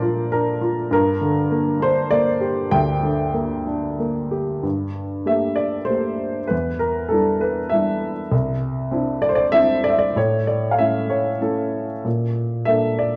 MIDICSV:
0, 0, Header, 1, 2, 480
1, 0, Start_track
1, 0, Tempo, 603015
1, 726, Time_signature, 3, 2, 24, 8
1, 2173, Tempo, 636267
1, 4093, Tempo, 617284
1, 5533, Tempo, 602410
1, 7453, Tempo, 628931
1, 10221, End_track
2, 0, Start_track
2, 0, Title_t, "Upright piano"
2, 0, Program_c, 0, 0
2, 0, Control_c, 0, 64, 127
2, 0, Note_on_c, 0, 46, 64
2, 0, Note_on_c, 0, 53, 49
2, 0, Note_on_c, 0, 62, 51
2, 0, Note_on_c, 0, 70, 72
2, 0, Note_on_c, 0, 72, 72
2, 0, Note_on_c, 0, 74, 84
2, 16, Note_on_c, 0, 65, 53
2, 240, Note_off_c, 0, 62, 0
2, 252, Note_on_c, 0, 62, 44
2, 254, Note_off_c, 0, 70, 0
2, 254, Note_on_c, 0, 70, 77
2, 265, Note_off_c, 0, 74, 0
2, 456, Note_off_c, 0, 53, 0
2, 476, Note_off_c, 0, 65, 0
2, 488, Note_on_c, 0, 65, 50
2, 584, Note_off_c, 0, 70, 0
2, 688, Note_off_c, 0, 46, 0
2, 712, Note_off_c, 0, 62, 0
2, 719, Note_off_c, 0, 65, 0
2, 723, Note_on_c, 0, 43, 63
2, 735, Control_c, 0, 64, 0
2, 738, Note_on_c, 0, 70, 84
2, 739, Note_off_c, 0, 72, 0
2, 883, Control_c, 0, 64, 127
2, 965, Note_on_c, 0, 50, 54
2, 1203, Note_on_c, 0, 58, 57
2, 1433, Note_on_c, 0, 62, 50
2, 1452, Note_on_c, 0, 72, 88
2, 1475, Note_off_c, 0, 70, 0
2, 1669, Note_off_c, 0, 58, 0
2, 1676, Note_on_c, 0, 74, 90
2, 1681, Note_on_c, 0, 58, 52
2, 1697, Note_off_c, 0, 72, 0
2, 1900, Note_off_c, 0, 50, 0
2, 1916, Note_on_c, 0, 67, 57
2, 2136, Note_off_c, 0, 74, 0
2, 2140, Note_off_c, 0, 43, 0
2, 2161, Note_on_c, 0, 79, 89
2, 2162, Note_on_c, 0, 38, 62
2, 2373, Note_off_c, 0, 62, 0
2, 2400, Note_on_c, 0, 50, 50
2, 2614, Note_off_c, 0, 58, 0
2, 2630, Note_on_c, 0, 58, 51
2, 2852, Note_off_c, 0, 67, 0
2, 2880, Note_on_c, 0, 62, 42
2, 3098, Note_off_c, 0, 79, 0
2, 3114, Note_off_c, 0, 58, 0
2, 3125, Note_on_c, 0, 58, 47
2, 3349, Note_off_c, 0, 50, 0
2, 3367, Note_on_c, 0, 67, 49
2, 3587, Note_off_c, 0, 38, 0
2, 3597, Note_off_c, 0, 62, 0
2, 3603, Note_off_c, 0, 58, 0
2, 3606, Note_on_c, 0, 43, 48
2, 3608, Note_off_c, 0, 67, 0
2, 3630, Control_c, 0, 64, 0
2, 3776, Control_c, 0, 64, 127
2, 4077, Note_on_c, 0, 57, 36
2, 4079, Note_on_c, 0, 58, 33
2, 4081, Note_on_c, 0, 67, 38
2, 4090, Note_on_c, 0, 76, 69
2, 4312, Note_on_c, 0, 74, 68
2, 4315, Note_off_c, 0, 76, 0
2, 4470, Note_off_c, 0, 57, 0
2, 4471, Note_off_c, 0, 58, 0
2, 4473, Note_off_c, 0, 67, 0
2, 4540, Note_on_c, 0, 72, 72
2, 4572, Note_on_c, 0, 58, 32
2, 4573, Note_off_c, 0, 74, 0
2, 4573, Note_on_c, 0, 57, 34
2, 4573, Note_on_c, 0, 67, 35
2, 4960, Note_off_c, 0, 58, 0
2, 4961, Note_off_c, 0, 57, 0
2, 4961, Note_off_c, 0, 67, 0
2, 5010, Note_off_c, 0, 72, 0
2, 5020, Note_off_c, 0, 43, 0
2, 5025, Note_on_c, 0, 71, 65
2, 5051, Note_on_c, 0, 40, 52
2, 5071, Control_c, 0, 64, 0
2, 5187, Control_c, 0, 64, 127
2, 5263, Note_off_c, 0, 71, 0
2, 5273, Note_on_c, 0, 70, 70
2, 5501, Note_on_c, 0, 69, 67
2, 5520, Note_on_c, 0, 62, 38
2, 5521, Note_on_c, 0, 55, 40
2, 5526, Note_on_c, 0, 64, 46
2, 5528, Note_off_c, 0, 70, 0
2, 5738, Note_off_c, 0, 69, 0
2, 5757, Note_on_c, 0, 71, 58
2, 5906, Note_off_c, 0, 55, 0
2, 5906, Note_off_c, 0, 62, 0
2, 5909, Note_off_c, 0, 64, 0
2, 5984, Note_off_c, 0, 71, 0
2, 5986, Note_on_c, 0, 76, 69
2, 6001, Note_on_c, 0, 55, 42
2, 6008, Note_on_c, 0, 64, 43
2, 6011, Note_on_c, 0, 62, 36
2, 6329, Note_off_c, 0, 76, 0
2, 6388, Note_off_c, 0, 55, 0
2, 6392, Note_off_c, 0, 64, 0
2, 6394, Note_off_c, 0, 62, 0
2, 6452, Note_off_c, 0, 40, 0
2, 6480, Note_on_c, 0, 36, 59
2, 6499, Control_c, 0, 64, 0
2, 6642, Control_c, 0, 64, 127
2, 6956, Note_on_c, 0, 60, 45
2, 6962, Note_on_c, 0, 62, 41
2, 6965, Note_on_c, 0, 64, 45
2, 7199, Note_on_c, 0, 74, 85
2, 7254, Note_off_c, 0, 74, 0
2, 7256, Note_on_c, 0, 72, 69
2, 7307, Note_on_c, 0, 74, 81
2, 7314, Note_off_c, 0, 72, 0
2, 7349, Note_off_c, 0, 60, 0
2, 7353, Note_off_c, 0, 62, 0
2, 7354, Note_off_c, 0, 64, 0
2, 7438, Note_off_c, 0, 74, 0
2, 7439, Note_on_c, 0, 76, 94
2, 7443, Note_on_c, 0, 60, 44
2, 7450, Note_on_c, 0, 62, 37
2, 7455, Note_on_c, 0, 64, 45
2, 7684, Note_on_c, 0, 74, 83
2, 7691, Note_off_c, 0, 76, 0
2, 7730, Note_on_c, 0, 76, 65
2, 7737, Note_off_c, 0, 74, 0
2, 7791, Note_off_c, 0, 76, 0
2, 7796, Note_on_c, 0, 74, 78
2, 7829, Note_off_c, 0, 60, 0
2, 7834, Note_off_c, 0, 62, 0
2, 7837, Note_off_c, 0, 64, 0
2, 7897, Note_off_c, 0, 36, 0
2, 7920, Note_off_c, 0, 74, 0
2, 7928, Note_on_c, 0, 45, 57
2, 7937, Note_on_c, 0, 73, 75
2, 7942, Control_c, 0, 64, 0
2, 8084, Control_c, 0, 64, 127
2, 8158, Note_off_c, 0, 73, 0
2, 8167, Note_on_c, 0, 74, 64
2, 8352, Note_on_c, 0, 77, 59
2, 8359, Note_off_c, 0, 74, 0
2, 8406, Note_off_c, 0, 77, 0
2, 8406, Note_on_c, 0, 76, 75
2, 8407, Note_on_c, 0, 57, 40
2, 8409, Note_on_c, 0, 61, 35
2, 8413, Note_on_c, 0, 64, 45
2, 8628, Note_off_c, 0, 76, 0
2, 8644, Note_on_c, 0, 73, 61
2, 8791, Note_off_c, 0, 57, 0
2, 8793, Note_off_c, 0, 61, 0
2, 8795, Note_off_c, 0, 64, 0
2, 8871, Note_off_c, 0, 73, 0
2, 8880, Note_on_c, 0, 57, 33
2, 8883, Note_on_c, 0, 61, 32
2, 8886, Note_on_c, 0, 64, 38
2, 8889, Note_on_c, 0, 69, 57
2, 9228, Note_off_c, 0, 69, 0
2, 9272, Note_off_c, 0, 57, 0
2, 9274, Note_off_c, 0, 61, 0
2, 9276, Note_off_c, 0, 64, 0
2, 9342, Note_off_c, 0, 45, 0
2, 9368, Note_on_c, 0, 46, 48
2, 9385, Control_c, 0, 64, 0
2, 9509, Control_c, 0, 64, 127
2, 9832, Note_on_c, 0, 76, 77
2, 9847, Note_on_c, 0, 58, 42
2, 9850, Note_on_c, 0, 62, 34
2, 9852, Note_on_c, 0, 69, 40
2, 10086, Note_on_c, 0, 74, 66
2, 10090, Note_off_c, 0, 76, 0
2, 10221, Note_off_c, 0, 46, 0
2, 10221, Note_off_c, 0, 58, 0
2, 10221, Note_off_c, 0, 62, 0
2, 10221, Note_off_c, 0, 69, 0
2, 10221, Note_off_c, 0, 74, 0
2, 10221, End_track
0, 0, End_of_file